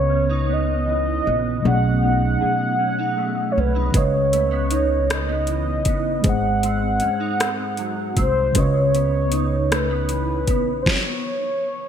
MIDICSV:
0, 0, Header, 1, 7, 480
1, 0, Start_track
1, 0, Key_signature, 4, "minor"
1, 0, Tempo, 769231
1, 1020, Time_signature, 6, 3, 24, 8
1, 7417, End_track
2, 0, Start_track
2, 0, Title_t, "Soft synth lead"
2, 0, Program_c, 0, 80
2, 0, Note_on_c, 0, 73, 92
2, 330, Note_on_c, 0, 75, 99
2, 340, Note_off_c, 0, 73, 0
2, 1035, Note_off_c, 0, 75, 0
2, 1041, Note_on_c, 0, 78, 102
2, 2195, Note_on_c, 0, 73, 64
2, 2205, Note_off_c, 0, 78, 0
2, 2246, Note_on_c, 0, 71, 83
2, 2255, Note_off_c, 0, 73, 0
2, 2479, Note_on_c, 0, 73, 86
2, 2488, Note_off_c, 0, 71, 0
2, 3203, Note_on_c, 0, 75, 93
2, 3212, Note_off_c, 0, 73, 0
2, 3911, Note_off_c, 0, 75, 0
2, 3926, Note_on_c, 0, 78, 100
2, 5088, Note_off_c, 0, 78, 0
2, 5116, Note_on_c, 0, 72, 75
2, 5365, Note_on_c, 0, 73, 81
2, 5374, Note_off_c, 0, 72, 0
2, 6086, Note_on_c, 0, 71, 76
2, 6095, Note_off_c, 0, 73, 0
2, 6756, Note_on_c, 0, 72, 51
2, 6765, Note_off_c, 0, 71, 0
2, 6802, Note_on_c, 0, 73, 83
2, 6811, Note_off_c, 0, 72, 0
2, 7417, Note_off_c, 0, 73, 0
2, 7417, End_track
3, 0, Start_track
3, 0, Title_t, "Tine electric piano"
3, 0, Program_c, 1, 4
3, 0, Control_c, 1, 64, 127
3, 0, Note_on_c, 1, 49, 51
3, 0, Note_on_c, 1, 61, 47
3, 0, Note_on_c, 1, 71, 50
3, 0, Note_on_c, 1, 73, 59
3, 0, Note_on_c, 1, 75, 47
3, 987, Note_off_c, 1, 49, 0
3, 993, Note_off_c, 1, 61, 0
3, 999, Note_off_c, 1, 71, 0
3, 1003, Note_on_c, 1, 47, 47
3, 1005, Note_off_c, 1, 75, 0
3, 1011, Note_off_c, 1, 73, 0
3, 1013, Note_on_c, 1, 54, 48
3, 1023, Note_on_c, 1, 57, 46
3, 1029, Control_c, 1, 64, 0
3, 1031, Note_on_c, 1, 61, 45
3, 1040, Note_on_c, 1, 68, 45
3, 1050, Note_on_c, 1, 74, 47
3, 1075, Note_off_c, 1, 74, 0
3, 1090, Note_on_c, 1, 75, 57
3, 1146, Control_c, 1, 64, 127
3, 2427, Note_off_c, 1, 47, 0
3, 2432, Note_off_c, 1, 54, 0
3, 2436, Note_off_c, 1, 57, 0
3, 2441, Note_off_c, 1, 61, 0
3, 2442, Note_on_c, 1, 49, 47
3, 2445, Note_off_c, 1, 68, 0
3, 2454, Note_on_c, 1, 61, 43
3, 2465, Note_on_c, 1, 71, 51
3, 2469, Control_c, 1, 64, 0
3, 2470, Note_off_c, 1, 75, 0
3, 2476, Note_on_c, 1, 75, 47
3, 2488, Note_on_c, 1, 73, 57
3, 2568, Control_c, 1, 64, 127
3, 3866, Note_off_c, 1, 49, 0
3, 3872, Note_off_c, 1, 61, 0
3, 3877, Note_off_c, 1, 71, 0
3, 3881, Note_on_c, 1, 56, 52
3, 3883, Note_off_c, 1, 75, 0
3, 3889, Note_off_c, 1, 73, 0
3, 3891, Note_on_c, 1, 68, 50
3, 3902, Note_on_c, 1, 72, 47
3, 3907, Control_c, 1, 64, 0
3, 3914, Note_on_c, 1, 75, 46
3, 3927, Note_on_c, 1, 78, 60
3, 4036, Control_c, 1, 64, 127
3, 5305, Note_off_c, 1, 56, 0
3, 5310, Note_off_c, 1, 68, 0
3, 5316, Note_off_c, 1, 72, 0
3, 5320, Note_on_c, 1, 49, 54
3, 5322, Note_off_c, 1, 75, 0
3, 5328, Note_off_c, 1, 78, 0
3, 5333, Note_on_c, 1, 61, 50
3, 5344, Note_on_c, 1, 71, 53
3, 5348, Control_c, 1, 64, 0
3, 5355, Note_on_c, 1, 75, 52
3, 5366, Note_on_c, 1, 73, 61
3, 5444, Control_c, 1, 64, 127
3, 6745, Note_off_c, 1, 49, 0
3, 6752, Note_off_c, 1, 61, 0
3, 6757, Note_off_c, 1, 71, 0
3, 6763, Note_off_c, 1, 75, 0
3, 6768, Note_off_c, 1, 73, 0
3, 6788, Control_c, 1, 64, 0
3, 7417, End_track
4, 0, Start_track
4, 0, Title_t, "Clean electric guitar"
4, 0, Program_c, 2, 27
4, 0, Note_on_c, 2, 49, 61
4, 0, Note_on_c, 2, 59, 49
4, 57, Note_on_c, 2, 61, 50
4, 183, Note_off_c, 2, 61, 0
4, 183, Note_on_c, 2, 63, 42
4, 296, Note_off_c, 2, 59, 0
4, 298, Note_on_c, 2, 59, 50
4, 538, Note_on_c, 2, 52, 45
4, 778, Note_off_c, 2, 59, 0
4, 780, Note_on_c, 2, 59, 44
4, 1019, Note_off_c, 2, 49, 0
4, 1025, Note_on_c, 2, 47, 66
4, 1067, Note_off_c, 2, 52, 0
4, 1069, Note_off_c, 2, 63, 0
4, 1264, Note_on_c, 2, 63, 48
4, 1502, Note_on_c, 2, 68, 51
4, 1736, Note_off_c, 2, 63, 0
4, 1738, Note_on_c, 2, 61, 47
4, 1757, Note_off_c, 2, 59, 0
4, 1863, Note_off_c, 2, 61, 0
4, 1863, Note_on_c, 2, 63, 41
4, 1978, Note_on_c, 2, 57, 45
4, 2218, Note_off_c, 2, 63, 0
4, 2221, Note_on_c, 2, 61, 46
4, 2340, Note_off_c, 2, 61, 0
4, 2340, Note_on_c, 2, 63, 40
4, 2451, Note_off_c, 2, 47, 0
4, 2454, Note_on_c, 2, 49, 59
4, 2507, Note_off_c, 2, 57, 0
4, 2508, Note_off_c, 2, 63, 0
4, 2698, Note_on_c, 2, 57, 48
4, 2716, Note_off_c, 2, 68, 0
4, 2814, Note_off_c, 2, 57, 0
4, 2814, Note_on_c, 2, 59, 39
4, 2937, Note_on_c, 2, 63, 55
4, 3175, Note_off_c, 2, 59, 0
4, 3177, Note_on_c, 2, 57, 47
4, 3297, Note_off_c, 2, 57, 0
4, 3297, Note_on_c, 2, 59, 44
4, 3420, Note_on_c, 2, 52, 47
4, 3654, Note_off_c, 2, 59, 0
4, 3661, Note_on_c, 2, 59, 45
4, 3895, Note_on_c, 2, 44, 66
4, 3897, Note_off_c, 2, 49, 0
4, 3948, Note_off_c, 2, 52, 0
4, 3949, Note_off_c, 2, 59, 0
4, 4136, Note_on_c, 2, 60, 47
4, 4375, Note_off_c, 2, 63, 0
4, 4377, Note_on_c, 2, 61, 52
4, 4492, Note_off_c, 2, 61, 0
4, 4492, Note_on_c, 2, 63, 48
4, 4607, Note_off_c, 2, 60, 0
4, 4615, Note_on_c, 2, 60, 49
4, 4857, Note_on_c, 2, 54, 45
4, 5087, Note_off_c, 2, 60, 0
4, 5095, Note_on_c, 2, 60, 45
4, 5332, Note_on_c, 2, 49, 63
4, 5338, Note_off_c, 2, 44, 0
4, 5384, Note_off_c, 2, 63, 0
4, 5385, Note_off_c, 2, 60, 0
4, 5386, Note_off_c, 2, 54, 0
4, 5573, Note_on_c, 2, 59, 46
4, 5815, Note_on_c, 2, 63, 53
4, 6055, Note_off_c, 2, 59, 0
4, 6058, Note_on_c, 2, 57, 48
4, 6177, Note_off_c, 2, 57, 0
4, 6177, Note_on_c, 2, 59, 43
4, 6295, Note_on_c, 2, 52, 45
4, 6533, Note_off_c, 2, 59, 0
4, 6541, Note_on_c, 2, 59, 46
4, 6776, Note_off_c, 2, 49, 0
4, 6826, Note_off_c, 2, 52, 0
4, 7140, Note_off_c, 2, 59, 0
4, 7140, Note_off_c, 2, 63, 0
4, 7417, End_track
5, 0, Start_track
5, 0, Title_t, "Upright bass"
5, 0, Program_c, 3, 32
5, 0, Note_on_c, 3, 37, 87
5, 760, Note_off_c, 3, 37, 0
5, 793, Note_on_c, 3, 34, 75
5, 1003, Note_off_c, 3, 34, 0
5, 1031, Note_on_c, 3, 35, 88
5, 1481, Note_off_c, 3, 35, 0
5, 2231, Note_on_c, 3, 36, 73
5, 2442, Note_off_c, 3, 36, 0
5, 2466, Note_on_c, 3, 37, 82
5, 3662, Note_off_c, 3, 37, 0
5, 3662, Note_on_c, 3, 31, 78
5, 3877, Note_off_c, 3, 31, 0
5, 3903, Note_on_c, 3, 32, 74
5, 4356, Note_off_c, 3, 32, 0
5, 5102, Note_on_c, 3, 36, 65
5, 5317, Note_off_c, 3, 36, 0
5, 5343, Note_on_c, 3, 37, 84
5, 6543, Note_off_c, 3, 37, 0
5, 6543, Note_on_c, 3, 34, 74
5, 6758, Note_off_c, 3, 34, 0
5, 7417, End_track
6, 0, Start_track
6, 0, Title_t, "Muted upright bass strokes"
6, 1512, Note_on_c, 9, 29, 34
6, 1574, Note_off_c, 9, 29, 0
6, 4395, Note_on_c, 9, 29, 36
6, 4458, Note_off_c, 9, 29, 0
6, 7417, End_track
7, 0, Start_track
7, 0, Title_t, "Drums"
7, 2459, Note_on_c, 9, 36, 92
7, 2460, Note_on_c, 9, 42, 57
7, 2521, Note_off_c, 9, 36, 0
7, 2522, Note_off_c, 9, 42, 0
7, 2702, Note_on_c, 9, 42, 42
7, 2765, Note_off_c, 9, 42, 0
7, 2936, Note_on_c, 9, 42, 40
7, 2999, Note_off_c, 9, 42, 0
7, 3184, Note_on_c, 9, 42, 49
7, 3187, Note_on_c, 9, 37, 93
7, 3247, Note_off_c, 9, 42, 0
7, 3249, Note_off_c, 9, 37, 0
7, 3414, Note_on_c, 9, 42, 36
7, 3476, Note_off_c, 9, 42, 0
7, 3651, Note_on_c, 9, 42, 48
7, 3655, Note_on_c, 9, 36, 66
7, 3713, Note_off_c, 9, 42, 0
7, 3718, Note_off_c, 9, 36, 0
7, 3893, Note_on_c, 9, 42, 58
7, 3896, Note_on_c, 9, 36, 92
7, 3955, Note_off_c, 9, 42, 0
7, 3958, Note_off_c, 9, 36, 0
7, 4139, Note_on_c, 9, 42, 43
7, 4201, Note_off_c, 9, 42, 0
7, 4367, Note_on_c, 9, 42, 42
7, 4429, Note_off_c, 9, 42, 0
7, 4619, Note_on_c, 9, 42, 46
7, 4622, Note_on_c, 9, 37, 89
7, 4682, Note_off_c, 9, 42, 0
7, 4684, Note_off_c, 9, 37, 0
7, 4851, Note_on_c, 9, 42, 38
7, 4913, Note_off_c, 9, 42, 0
7, 5095, Note_on_c, 9, 42, 43
7, 5096, Note_on_c, 9, 36, 68
7, 5158, Note_off_c, 9, 42, 0
7, 5159, Note_off_c, 9, 36, 0
7, 5334, Note_on_c, 9, 42, 64
7, 5336, Note_on_c, 9, 36, 92
7, 5397, Note_off_c, 9, 42, 0
7, 5399, Note_off_c, 9, 36, 0
7, 5582, Note_on_c, 9, 42, 46
7, 5644, Note_off_c, 9, 42, 0
7, 5813, Note_on_c, 9, 42, 45
7, 5876, Note_off_c, 9, 42, 0
7, 6064, Note_on_c, 9, 42, 45
7, 6066, Note_on_c, 9, 37, 88
7, 6126, Note_off_c, 9, 42, 0
7, 6128, Note_off_c, 9, 37, 0
7, 6295, Note_on_c, 9, 42, 40
7, 6357, Note_off_c, 9, 42, 0
7, 6536, Note_on_c, 9, 42, 42
7, 6538, Note_on_c, 9, 36, 64
7, 6599, Note_off_c, 9, 42, 0
7, 6600, Note_off_c, 9, 36, 0
7, 6779, Note_on_c, 9, 36, 85
7, 6785, Note_on_c, 9, 38, 70
7, 6841, Note_off_c, 9, 36, 0
7, 6847, Note_off_c, 9, 38, 0
7, 7417, End_track
0, 0, End_of_file